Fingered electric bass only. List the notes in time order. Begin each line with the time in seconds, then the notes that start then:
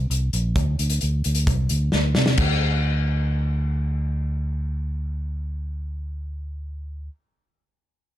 0.10 C2
0.33 A#1
0.56 D2
0.79 D2
1.03 D2
1.26 D2
1.47 C2
1.71 D2
1.94 D2
2.17 C3
2.38 D2